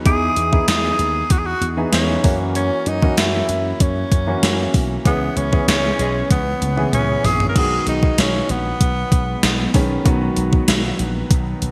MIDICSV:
0, 0, Header, 1, 7, 480
1, 0, Start_track
1, 0, Tempo, 625000
1, 43, Time_signature, 4, 2, 24, 8
1, 8995, End_track
2, 0, Start_track
2, 0, Title_t, "Tenor saxophone"
2, 0, Program_c, 0, 66
2, 49, Note_on_c, 0, 68, 100
2, 495, Note_off_c, 0, 68, 0
2, 530, Note_on_c, 0, 68, 93
2, 1009, Note_on_c, 0, 66, 90
2, 1021, Note_off_c, 0, 68, 0
2, 1064, Note_on_c, 0, 68, 77
2, 1076, Note_off_c, 0, 66, 0
2, 1118, Note_on_c, 0, 66, 94
2, 1129, Note_off_c, 0, 68, 0
2, 1279, Note_off_c, 0, 66, 0
2, 1490, Note_on_c, 0, 61, 82
2, 1821, Note_off_c, 0, 61, 0
2, 1967, Note_on_c, 0, 61, 90
2, 2211, Note_on_c, 0, 63, 86
2, 2222, Note_off_c, 0, 61, 0
2, 2449, Note_on_c, 0, 64, 81
2, 2461, Note_off_c, 0, 63, 0
2, 2932, Note_on_c, 0, 61, 75
2, 2943, Note_off_c, 0, 64, 0
2, 3647, Note_off_c, 0, 61, 0
2, 3893, Note_on_c, 0, 59, 97
2, 4129, Note_on_c, 0, 61, 97
2, 4141, Note_off_c, 0, 59, 0
2, 4366, Note_off_c, 0, 61, 0
2, 4369, Note_on_c, 0, 61, 93
2, 4815, Note_off_c, 0, 61, 0
2, 4853, Note_on_c, 0, 59, 83
2, 5297, Note_off_c, 0, 59, 0
2, 5330, Note_on_c, 0, 61, 92
2, 5572, Note_on_c, 0, 68, 101
2, 5584, Note_off_c, 0, 61, 0
2, 5750, Note_off_c, 0, 68, 0
2, 5754, Note_on_c, 0, 70, 76
2, 5816, Note_on_c, 0, 68, 101
2, 5828, Note_off_c, 0, 70, 0
2, 6049, Note_off_c, 0, 68, 0
2, 6058, Note_on_c, 0, 63, 82
2, 6274, Note_off_c, 0, 63, 0
2, 6299, Note_on_c, 0, 61, 80
2, 6539, Note_on_c, 0, 59, 89
2, 6550, Note_off_c, 0, 61, 0
2, 7491, Note_off_c, 0, 59, 0
2, 8995, End_track
3, 0, Start_track
3, 0, Title_t, "Grand piano"
3, 0, Program_c, 1, 0
3, 0, Control_c, 1, 64, 127
3, 42, Note_on_c, 1, 52, 72
3, 44, Note_on_c, 1, 59, 60
3, 47, Note_on_c, 1, 63, 63
3, 51, Note_on_c, 1, 68, 78
3, 52, Control_c, 1, 64, 0
3, 175, Control_c, 1, 64, 127
3, 320, Note_off_c, 1, 52, 0
3, 321, Note_off_c, 1, 59, 0
3, 323, Note_off_c, 1, 63, 0
3, 325, Note_off_c, 1, 68, 0
3, 398, Note_on_c, 1, 64, 67
3, 402, Note_on_c, 1, 59, 62
3, 403, Note_on_c, 1, 63, 63
3, 406, Note_on_c, 1, 68, 70
3, 1141, Note_off_c, 1, 64, 0
3, 1143, Note_off_c, 1, 59, 0
3, 1144, Note_off_c, 1, 63, 0
3, 1146, Note_off_c, 1, 68, 0
3, 1357, Note_on_c, 1, 52, 71
3, 1360, Note_on_c, 1, 59, 67
3, 1364, Note_on_c, 1, 63, 66
3, 1366, Note_on_c, 1, 68, 79
3, 1705, Note_off_c, 1, 52, 0
3, 1716, Note_on_c, 1, 52, 68
3, 1720, Note_on_c, 1, 58, 64
3, 1721, Note_off_c, 1, 59, 0
3, 1722, Note_on_c, 1, 61, 65
3, 1723, Note_off_c, 1, 63, 0
3, 1724, Note_off_c, 1, 68, 0
3, 1727, Note_on_c, 1, 66, 76
3, 1734, Control_c, 1, 64, 0
3, 1865, Control_c, 1, 64, 127
3, 2200, Note_off_c, 1, 52, 0
3, 2201, Note_off_c, 1, 58, 0
3, 2202, Note_off_c, 1, 61, 0
3, 2205, Note_off_c, 1, 66, 0
3, 2317, Note_on_c, 1, 52, 69
3, 2320, Note_on_c, 1, 58, 61
3, 2322, Note_on_c, 1, 61, 61
3, 2327, Note_on_c, 1, 66, 75
3, 3061, Note_off_c, 1, 52, 0
3, 3062, Note_off_c, 1, 58, 0
3, 3064, Note_off_c, 1, 61, 0
3, 3066, Note_off_c, 1, 66, 0
3, 3277, Note_on_c, 1, 52, 69
3, 3281, Note_on_c, 1, 58, 64
3, 3284, Note_on_c, 1, 61, 64
3, 3288, Note_on_c, 1, 66, 74
3, 3743, Note_off_c, 1, 52, 0
3, 3745, Note_off_c, 1, 58, 0
3, 3747, Note_off_c, 1, 61, 0
3, 3749, Note_off_c, 1, 66, 0
3, 3876, Note_on_c, 1, 52, 70
3, 3879, Note_on_c, 1, 59, 59
3, 3882, Note_on_c, 1, 61, 64
3, 3886, Note_on_c, 1, 68, 73
3, 3894, Control_c, 1, 64, 0
3, 4015, Control_c, 1, 64, 127
3, 4157, Note_off_c, 1, 52, 0
3, 4159, Note_off_c, 1, 59, 0
3, 4160, Note_off_c, 1, 61, 0
3, 4162, Note_off_c, 1, 68, 0
3, 4237, Note_on_c, 1, 52, 67
3, 4240, Note_on_c, 1, 59, 64
3, 4243, Note_on_c, 1, 61, 61
3, 4247, Note_on_c, 1, 68, 76
3, 4981, Note_off_c, 1, 52, 0
3, 4982, Note_off_c, 1, 59, 0
3, 4984, Note_off_c, 1, 61, 0
3, 4986, Note_off_c, 1, 68, 0
3, 5197, Note_on_c, 1, 52, 72
3, 5200, Note_on_c, 1, 59, 66
3, 5203, Note_on_c, 1, 61, 64
3, 5205, Note_on_c, 1, 68, 79
3, 5663, Note_off_c, 1, 52, 0
3, 5664, Note_off_c, 1, 59, 0
3, 5666, Note_off_c, 1, 61, 0
3, 5667, Note_off_c, 1, 68, 0
3, 5799, Note_on_c, 1, 51, 72
3, 5804, Note_on_c, 1, 56, 63
3, 5805, Note_on_c, 1, 59, 62
3, 5808, Note_on_c, 1, 66, 75
3, 5812, Control_c, 1, 64, 0
3, 5931, Control_c, 1, 64, 127
3, 6542, Note_off_c, 1, 51, 0
3, 6544, Note_off_c, 1, 56, 0
3, 6545, Note_off_c, 1, 59, 0
3, 6547, Note_off_c, 1, 66, 0
3, 7479, Note_on_c, 1, 51, 79
3, 7482, Note_on_c, 1, 56, 77
3, 7485, Note_on_c, 1, 59, 71
3, 7488, Note_on_c, 1, 61, 90
3, 7666, Note_off_c, 1, 51, 0
3, 7667, Note_off_c, 1, 56, 0
3, 7669, Note_off_c, 1, 59, 0
3, 7670, Note_off_c, 1, 61, 0
3, 7717, Note_on_c, 1, 51, 83
3, 7720, Note_on_c, 1, 54, 74
3, 7723, Note_on_c, 1, 59, 76
3, 7727, Note_on_c, 1, 66, 88
3, 7732, Control_c, 1, 64, 0
3, 7883, Control_c, 1, 64, 127
3, 8461, Note_off_c, 1, 51, 0
3, 8463, Note_off_c, 1, 54, 0
3, 8464, Note_off_c, 1, 59, 0
3, 8466, Note_off_c, 1, 66, 0
3, 8995, End_track
4, 0, Start_track
4, 0, Title_t, "Horn section"
4, 0, Program_c, 2, 61
4, 3882, Note_on_c, 2, 52, 71
4, 3882, Note_on_c, 2, 56, 77
4, 3882, Note_on_c, 2, 68, 84
4, 3883, Note_on_c, 2, 61, 75
4, 3984, Note_off_c, 2, 52, 0
4, 3984, Note_off_c, 2, 56, 0
4, 3984, Note_off_c, 2, 68, 0
4, 3985, Note_off_c, 2, 61, 0
4, 4601, Note_on_c, 2, 52, 77
4, 4601, Note_on_c, 2, 56, 88
4, 4601, Note_on_c, 2, 68, 96
4, 4602, Note_on_c, 2, 61, 77
4, 4755, Note_off_c, 2, 52, 0
4, 4755, Note_off_c, 2, 56, 0
4, 4755, Note_off_c, 2, 61, 0
4, 4755, Note_off_c, 2, 68, 0
4, 8995, End_track
5, 0, Start_track
5, 0, Title_t, "Ambient pad"
5, 0, Program_c, 3, 92
5, 5803, Note_on_c, 3, 56, 75
5, 5803, Note_on_c, 3, 59, 94
5, 5804, Note_on_c, 3, 54, 79
5, 7704, Note_off_c, 3, 56, 0
5, 7726, Note_on_c, 3, 51, 83
5, 8995, Note_off_c, 3, 51, 0
5, 8995, Note_off_c, 3, 54, 0
5, 8995, Note_off_c, 3, 59, 0
5, 8995, End_track
6, 0, Start_track
6, 0, Title_t, "Slap bass"
6, 0, Program_c, 4, 36
6, 42, Note_on_c, 4, 40, 97
6, 215, Note_off_c, 4, 40, 0
6, 283, Note_on_c, 4, 40, 87
6, 456, Note_off_c, 4, 40, 0
6, 522, Note_on_c, 4, 40, 94
6, 695, Note_off_c, 4, 40, 0
6, 761, Note_on_c, 4, 39, 83
6, 935, Note_off_c, 4, 39, 0
6, 1002, Note_on_c, 4, 40, 90
6, 1175, Note_off_c, 4, 40, 0
6, 1239, Note_on_c, 4, 40, 109
6, 1413, Note_off_c, 4, 40, 0
6, 1481, Note_on_c, 4, 40, 96
6, 1655, Note_off_c, 4, 40, 0
6, 1721, Note_on_c, 4, 42, 91
6, 2067, Note_off_c, 4, 42, 0
6, 2201, Note_on_c, 4, 42, 95
6, 2374, Note_off_c, 4, 42, 0
6, 2441, Note_on_c, 4, 42, 90
6, 2614, Note_off_c, 4, 42, 0
6, 2682, Note_on_c, 4, 42, 83
6, 2855, Note_off_c, 4, 42, 0
6, 2923, Note_on_c, 4, 42, 98
6, 3095, Note_off_c, 4, 42, 0
6, 3162, Note_on_c, 4, 42, 92
6, 3335, Note_off_c, 4, 42, 0
6, 3400, Note_on_c, 4, 42, 89
6, 3574, Note_off_c, 4, 42, 0
6, 3642, Note_on_c, 4, 35, 81
6, 3815, Note_off_c, 4, 35, 0
6, 3882, Note_on_c, 4, 37, 107
6, 4055, Note_off_c, 4, 37, 0
6, 4121, Note_on_c, 4, 37, 83
6, 4295, Note_off_c, 4, 37, 0
6, 4361, Note_on_c, 4, 37, 91
6, 4534, Note_off_c, 4, 37, 0
6, 4602, Note_on_c, 4, 35, 83
6, 4775, Note_off_c, 4, 35, 0
6, 4842, Note_on_c, 4, 37, 90
6, 5015, Note_off_c, 4, 37, 0
6, 5080, Note_on_c, 4, 37, 90
6, 5254, Note_off_c, 4, 37, 0
6, 5320, Note_on_c, 4, 37, 100
6, 5494, Note_off_c, 4, 37, 0
6, 5561, Note_on_c, 4, 34, 79
6, 5734, Note_off_c, 4, 34, 0
6, 5804, Note_on_c, 4, 35, 101
6, 5977, Note_off_c, 4, 35, 0
6, 6041, Note_on_c, 4, 35, 88
6, 6214, Note_off_c, 4, 35, 0
6, 6283, Note_on_c, 4, 35, 94
6, 6456, Note_off_c, 4, 35, 0
6, 6524, Note_on_c, 4, 34, 82
6, 6697, Note_off_c, 4, 34, 0
6, 6763, Note_on_c, 4, 35, 94
6, 6936, Note_off_c, 4, 35, 0
6, 7004, Note_on_c, 4, 35, 91
6, 7176, Note_off_c, 4, 35, 0
6, 7243, Note_on_c, 4, 35, 94
6, 7416, Note_off_c, 4, 35, 0
6, 7483, Note_on_c, 4, 35, 101
6, 7656, Note_off_c, 4, 35, 0
6, 7723, Note_on_c, 4, 35, 98
6, 7896, Note_off_c, 4, 35, 0
6, 7962, Note_on_c, 4, 35, 97
6, 8135, Note_off_c, 4, 35, 0
6, 8203, Note_on_c, 4, 35, 93
6, 8376, Note_off_c, 4, 35, 0
6, 8444, Note_on_c, 4, 34, 88
6, 8616, Note_off_c, 4, 34, 0
6, 8684, Note_on_c, 4, 35, 97
6, 8856, Note_off_c, 4, 35, 0
6, 8926, Note_on_c, 4, 35, 98
6, 8995, Note_off_c, 4, 35, 0
6, 8995, End_track
7, 0, Start_track
7, 0, Title_t, "Drums"
7, 42, Note_on_c, 9, 42, 76
7, 43, Note_on_c, 9, 36, 100
7, 119, Note_off_c, 9, 42, 0
7, 120, Note_off_c, 9, 36, 0
7, 280, Note_on_c, 9, 42, 77
7, 357, Note_off_c, 9, 42, 0
7, 405, Note_on_c, 9, 36, 83
7, 482, Note_off_c, 9, 36, 0
7, 521, Note_on_c, 9, 42, 89
7, 524, Note_on_c, 9, 38, 118
7, 598, Note_off_c, 9, 42, 0
7, 600, Note_off_c, 9, 38, 0
7, 761, Note_on_c, 9, 42, 69
7, 837, Note_off_c, 9, 42, 0
7, 999, Note_on_c, 9, 42, 91
7, 1002, Note_on_c, 9, 36, 92
7, 1076, Note_off_c, 9, 42, 0
7, 1078, Note_off_c, 9, 36, 0
7, 1242, Note_on_c, 9, 42, 76
7, 1319, Note_off_c, 9, 42, 0
7, 1479, Note_on_c, 9, 38, 103
7, 1480, Note_on_c, 9, 42, 74
7, 1556, Note_off_c, 9, 38, 0
7, 1557, Note_off_c, 9, 42, 0
7, 1720, Note_on_c, 9, 46, 70
7, 1722, Note_on_c, 9, 36, 96
7, 1797, Note_off_c, 9, 46, 0
7, 1799, Note_off_c, 9, 36, 0
7, 1960, Note_on_c, 9, 42, 71
7, 2037, Note_off_c, 9, 42, 0
7, 2198, Note_on_c, 9, 42, 76
7, 2275, Note_off_c, 9, 42, 0
7, 2323, Note_on_c, 9, 36, 84
7, 2400, Note_off_c, 9, 36, 0
7, 2438, Note_on_c, 9, 42, 87
7, 2441, Note_on_c, 9, 38, 110
7, 2515, Note_off_c, 9, 42, 0
7, 2518, Note_off_c, 9, 38, 0
7, 2678, Note_on_c, 9, 42, 73
7, 2755, Note_off_c, 9, 42, 0
7, 2920, Note_on_c, 9, 42, 89
7, 2921, Note_on_c, 9, 36, 88
7, 2997, Note_off_c, 9, 42, 0
7, 2998, Note_off_c, 9, 36, 0
7, 3161, Note_on_c, 9, 36, 87
7, 3163, Note_on_c, 9, 42, 75
7, 3238, Note_off_c, 9, 36, 0
7, 3240, Note_off_c, 9, 42, 0
7, 3402, Note_on_c, 9, 38, 101
7, 3402, Note_on_c, 9, 42, 74
7, 3479, Note_off_c, 9, 38, 0
7, 3479, Note_off_c, 9, 42, 0
7, 3641, Note_on_c, 9, 46, 75
7, 3642, Note_on_c, 9, 36, 77
7, 3718, Note_off_c, 9, 46, 0
7, 3719, Note_off_c, 9, 36, 0
7, 3882, Note_on_c, 9, 36, 100
7, 3882, Note_on_c, 9, 42, 75
7, 3959, Note_off_c, 9, 36, 0
7, 3959, Note_off_c, 9, 42, 0
7, 4121, Note_on_c, 9, 42, 74
7, 4198, Note_off_c, 9, 42, 0
7, 4245, Note_on_c, 9, 36, 90
7, 4322, Note_off_c, 9, 36, 0
7, 4364, Note_on_c, 9, 42, 91
7, 4367, Note_on_c, 9, 38, 110
7, 4440, Note_off_c, 9, 42, 0
7, 4443, Note_off_c, 9, 38, 0
7, 4603, Note_on_c, 9, 42, 71
7, 4680, Note_off_c, 9, 42, 0
7, 4843, Note_on_c, 9, 36, 94
7, 4843, Note_on_c, 9, 42, 89
7, 4843, Note_on_c, 9, 48, 55
7, 4919, Note_off_c, 9, 36, 0
7, 4920, Note_off_c, 9, 42, 0
7, 4920, Note_off_c, 9, 48, 0
7, 5083, Note_on_c, 9, 47, 67
7, 5084, Note_on_c, 9, 42, 80
7, 5160, Note_off_c, 9, 42, 0
7, 5160, Note_off_c, 9, 47, 0
7, 5204, Note_on_c, 9, 47, 59
7, 5281, Note_off_c, 9, 47, 0
7, 5324, Note_on_c, 9, 42, 73
7, 5324, Note_on_c, 9, 45, 71
7, 5400, Note_off_c, 9, 45, 0
7, 5401, Note_off_c, 9, 42, 0
7, 5564, Note_on_c, 9, 46, 72
7, 5565, Note_on_c, 9, 43, 87
7, 5640, Note_off_c, 9, 46, 0
7, 5642, Note_off_c, 9, 43, 0
7, 5685, Note_on_c, 9, 43, 84
7, 5762, Note_off_c, 9, 43, 0
7, 5804, Note_on_c, 9, 36, 97
7, 5804, Note_on_c, 9, 42, 70
7, 5805, Note_on_c, 9, 49, 84
7, 5881, Note_off_c, 9, 36, 0
7, 5881, Note_off_c, 9, 42, 0
7, 5881, Note_off_c, 9, 49, 0
7, 6041, Note_on_c, 9, 42, 76
7, 6118, Note_off_c, 9, 42, 0
7, 6165, Note_on_c, 9, 36, 86
7, 6242, Note_off_c, 9, 36, 0
7, 6283, Note_on_c, 9, 42, 88
7, 6286, Note_on_c, 9, 38, 110
7, 6360, Note_off_c, 9, 42, 0
7, 6362, Note_off_c, 9, 38, 0
7, 6523, Note_on_c, 9, 42, 74
7, 6599, Note_off_c, 9, 42, 0
7, 6763, Note_on_c, 9, 36, 85
7, 6763, Note_on_c, 9, 42, 96
7, 6840, Note_off_c, 9, 36, 0
7, 6840, Note_off_c, 9, 42, 0
7, 7003, Note_on_c, 9, 36, 87
7, 7005, Note_on_c, 9, 42, 77
7, 7080, Note_off_c, 9, 36, 0
7, 7082, Note_off_c, 9, 42, 0
7, 7243, Note_on_c, 9, 38, 106
7, 7244, Note_on_c, 9, 42, 76
7, 7320, Note_off_c, 9, 38, 0
7, 7320, Note_off_c, 9, 42, 0
7, 7481, Note_on_c, 9, 46, 75
7, 7484, Note_on_c, 9, 36, 86
7, 7558, Note_off_c, 9, 46, 0
7, 7561, Note_off_c, 9, 36, 0
7, 7722, Note_on_c, 9, 42, 75
7, 7723, Note_on_c, 9, 36, 102
7, 7799, Note_off_c, 9, 42, 0
7, 7800, Note_off_c, 9, 36, 0
7, 7960, Note_on_c, 9, 42, 77
7, 8037, Note_off_c, 9, 42, 0
7, 8085, Note_on_c, 9, 36, 85
7, 8162, Note_off_c, 9, 36, 0
7, 8201, Note_on_c, 9, 42, 90
7, 8204, Note_on_c, 9, 38, 115
7, 8278, Note_off_c, 9, 42, 0
7, 8281, Note_off_c, 9, 38, 0
7, 8442, Note_on_c, 9, 42, 69
7, 8519, Note_off_c, 9, 42, 0
7, 8683, Note_on_c, 9, 36, 95
7, 8683, Note_on_c, 9, 42, 95
7, 8760, Note_off_c, 9, 36, 0
7, 8760, Note_off_c, 9, 42, 0
7, 8923, Note_on_c, 9, 42, 75
7, 8995, Note_off_c, 9, 42, 0
7, 8995, End_track
0, 0, End_of_file